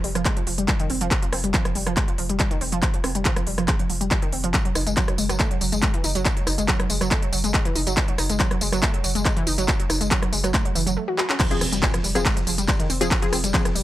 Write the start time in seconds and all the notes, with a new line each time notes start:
0.04 F1 G3, open hi-hat
0.15 F1 F3, cross-stick, closed hi-hat
0.25 G#3, kick, clap, closed hi-hat
0.37 F3, closed hi-hat
0.47 F1 F3, open hi-hat
0.58 F1 G3, closed hi-hat
0.68 G3, kick, clap, closed hi-hat
0.80 D#3, closed hi-hat
0.90 F1 C4, open hi-hat
1.01 F1 F3, closed hi-hat
1.11 F3, kick, clap, closed hi-hat
1.22 F3, closed hi-hat
1.33 F1 C4, cross-stick, open hi-hat
1.44 F1 G3, closed hi-hat
1.54 F3, kick, clap, closed hi-hat
1.65 F3, cross-stick, closed hi-hat
1.75 F1 G3, open hi-hat
1.87 F1 F3, cross-stick, closed hi-hat
1.97 G#3, kick, clap, closed hi-hat
2.08 F3, closed hi-hat
2.18 F1 F3, open hi-hat
2.29 F1 G3, closed hi-hat
2.40 G3, kick, clap, closed hi-hat
2.51 D#3, closed hi-hat
2.61 F1 C4, open hi-hat
2.72 F1 F3, closed hi-hat
2.83 F3, kick, clap, closed hi-hat
2.94 F3, closed hi-hat
3.04 F1 C4, cross-stick, open hi-hat
3.15 F1 G3, closed hi-hat
3.25 F3, kick, clap, closed hi-hat
3.36 F3, cross-stick, closed hi-hat
3.47 F1 G3, open hi-hat
3.58 F1 F3, cross-stick, closed hi-hat
3.68 G#3, kick, clap, closed hi-hat
3.79 F3, closed hi-hat
3.90 F1 F3, open hi-hat
4.01 F1 G3, closed hi-hat
4.11 G3, kick, clap, closed hi-hat
4.22 D#3, closed hi-hat
4.32 F1 C4, open hi-hat
4.44 F1 F3, closed hi-hat
4.54 F#3, kick, clap, closed hi-hat, tambourine
4.65 F#3, closed hi-hat
4.75 F#1 D#4, cross-stick, open hi-hat, tambourine
4.87 F#1 G#3, closed hi-hat, tambourine
4.97 F#3, kick, clap, closed hi-hat
5.08 F#3, cross-stick, closed hi-hat
5.18 F#1 G#3, open hi-hat, tambourine
5.29 F#1 F#3, cross-stick, closed hi-hat, tambourine
5.40 A3, kick, clap, closed hi-hat, tambourine
5.51 F#3, closed hi-hat
5.61 F#1 F#3, open hi-hat, tambourine
5.72 F#1 G#3, closed hi-hat, tambourine
5.82 G#3, kick, clap, closed hi-hat
5.94 E3, closed hi-hat
6.04 F#1 D#4, open hi-hat, tambourine
6.15 F#1 F#3, closed hi-hat, tambourine
6.25 F#3, kick, clap, closed hi-hat, tambourine
6.37 F#3, closed hi-hat
6.47 F#1 D#4, cross-stick, open hi-hat, tambourine
6.58 F#1 G#3, closed hi-hat, tambourine
6.68 F#3, kick, clap, closed hi-hat, tambourine
6.79 F#3, cross-stick, closed hi-hat
6.90 F#1 G#3, open hi-hat, tambourine
7.01 F#1 F#3, cross-stick, closed hi-hat, tambourine
7.11 A3, kick, clap, closed hi-hat, tambourine
7.22 F#3, closed hi-hat
7.33 F#1 F#3, open hi-hat, tambourine
7.44 F#1 G#3, closed hi-hat, tambourine
7.54 G#3, kick, clap, closed hi-hat
7.65 E3, closed hi-hat
7.75 F#1 D#4, open hi-hat, tambourine
7.87 F#1 F#3, closed hi-hat, tambourine
7.97 kick, clap, closed hi-hat
8.08 F#3, closed hi-hat
8.18 F#1 D#4, cross-stick, open hi-hat, tambourine
8.29 F#1 G#3, closed hi-hat, tambourine
8.40 F#3, kick, clap, closed hi-hat
8.51 F#3, cross-stick, closed hi-hat
8.61 F#1 G#3, open hi-hat, tambourine
8.72 F#1 F#3, cross-stick, closed hi-hat, tambourine
8.83 A3, kick, clap, closed hi-hat, tambourine
8.94 F#3, closed hi-hat
9.04 F#1 F#3, open hi-hat, tambourine
9.15 F#1 G#3, closed hi-hat, tambourine
9.25 G#3, kick, clap, closed hi-hat
9.37 E3, closed hi-hat
9.47 F#1 D#4, open hi-hat, tambourine
9.58 F#1 F#3, closed hi-hat, tambourine
9.68 F#3, kick, clap, closed hi-hat
9.79 F#3, closed hi-hat
9.90 F#1 D#4, cross-stick, open hi-hat, tambourine
10.01 F#1 G#3, closed hi-hat, tambourine
10.11 F#3, kick, clap, closed hi-hat, tambourine
10.22 F#3, cross-stick, closed hi-hat
10.32 F#1 G#3, open hi-hat, tambourine
10.44 F#1 F#3, cross-stick, closed hi-hat, tambourine
10.54 A3, kick, clap, closed hi-hat, tambourine
10.65 F#3, closed hi-hat
10.75 F#1 E3, open hi-hat, tambourine
10.87 F#1 F#3, closed hi-hat, tambourine
10.97 A3
11.08 F#4
11.18 F#4, clap
11.30 C#4, clap
11.40 F3, kick, clap, closed hi-hat, ride, tambourine, crash, impact
11.51 F3 C4 G#4, closed hi-hat
11.61 F1 C4, cross-stick, open hi-hat, tambourine
11.72 F1 G3, closed hi-hat, tambourine
11.82 F3 C4 G#4, kick, clap, closed hi-hat, ride, tambourine
11.94 F3, cross-stick, closed hi-hat
12.04 F1 G3, open hi-hat, tambourine
12.15 F1 F3 C4 G#4, cross-stick, closed hi-hat, tambourine
12.25 G#3, kick, clap, closed hi-hat, ride
12.37 F3, closed hi-hat
12.47 F1 F3, open hi-hat, tambourine
12.58 F1 G3, closed hi-hat, tambourine
12.68 G3, kick, clap, closed hi-hat, ride, tambourine
12.79 D#3, closed hi-hat
12.90 F1 C4, open hi-hat, tambourine
13.01 F1 F3 C4 G#4, closed hi-hat, tambourine
13.11 F3, kick, clap, closed hi-hat, ride
13.22 F3 C4 G#4, closed hi-hat
13.32 F1 C4, cross-stick, open hi-hat, tambourine
13.44 F1 G3, closed hi-hat, tambourine
13.54 F3 C4 G#4, kick, clap, closed hi-hat, ride, tambourine
13.65 F3, cross-stick, closed hi-hat
13.75 F1 G3, open hi-hat, tambourine